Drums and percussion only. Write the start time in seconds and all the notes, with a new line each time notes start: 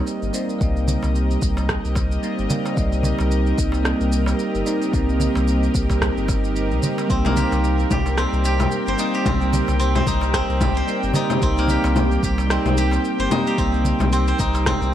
0.07 shaker
0.23 shaker
0.34 shaker
0.49 shaker
0.61 kick, shaker
0.76 shaker
0.88 darbuka dum, shaker
1.03 darbuka tek, shaker
1.15 shaker
1.31 shaker
1.42 kick, shaker
1.57 darbuka tek, shaker
1.69 kick, cross-stick, shaker
1.85 shaker
1.95 kick, darbuka tek, shaker
2.12 shaker
2.23 shaker
2.38 shaker
2.50 darbuka dum, shaker
2.66 darbuka tek, shaker
2.77 kick, shaker
2.92 darbuka ka, shaker
3.03 darbuka dum, shaker
3.19 darbuka tek, shaker
3.31 shaker
3.46 shaker
3.58 kick, shaker
3.72 darbuka ka, darbuka tek, shaker
3.85 cross-stick, shaker
4.01 shaker
4.12 shaker
4.26 darbuka ka, darbuka tek, shaker
4.39 shaker
4.55 shaker
4.66 shaker
4.82 shaker
4.93 kick, shaker
5.09 shaker
5.20 darbuka dum, shaker
5.35 darbuka tek, shaker
5.48 shaker
5.63 shaker
5.75 kick, shaker
5.90 kick, darbuka tek, shaker
6.02 kick, cross-stick, shaker
6.17 shaker
6.28 kick, darbuka tek, shaker
6.44 shaker
6.56 shaker
6.71 shaker
6.83 darbuka dum, shaker
6.98 darbuka tek, shaker
7.10 kick, shaker
7.25 darbuka ka, low conga, shaker
7.36 darbuka dum, shaker
7.52 darbuka tek, shaker
7.64 shaker
7.79 shaker
7.91 kick, low conga, shaker
8.06 darbuka ka, darbuka tek, shaker
8.18 cross-stick, shaker
8.33 shaker
8.45 shaker
8.60 darbuka ka, darbuka tek, low conga, shaker
8.71 shaker
8.87 shaker
8.98 shaker
9.14 shaker
9.26 kick, low conga, shaker
9.41 shaker
9.53 darbuka dum, shaker
9.68 darbuka tek, shaker
9.80 shaker
9.95 low conga, shaker
10.07 kick, shaker
10.21 darbuka tek, shaker
10.34 kick, cross-stick, shaker
10.50 shaker
10.61 kick, darbuka tek, low conga, shaker
10.77 shaker
10.88 shaker
11.03 shaker
11.14 darbuka dum, shaker
11.30 darbuka tek, low conga, shaker
11.42 kick, shaker
11.57 darbuka ka, shaker
11.68 darbuka dum, shaker
11.84 darbuka tek, shaker
11.96 low conga, shaker
12.12 shaker
12.23 kick, shaker
12.38 darbuka ka, darbuka tek, shaker
12.50 cross-stick, shaker
12.66 low conga, shaker
12.77 shaker
12.91 darbuka ka, darbuka tek, shaker
13.05 shaker
13.20 shaker
13.31 low conga, shaker
13.47 shaker
13.58 kick, shaker
13.74 shaker
13.84 darbuka dum, shaker
14.00 darbuka tek, low conga, shaker
14.13 shaker
14.28 shaker
14.39 kick, shaker
14.55 darbuka ka, darbuka tek, shaker
14.66 kick, cross-stick, low conga, shaker
14.82 shaker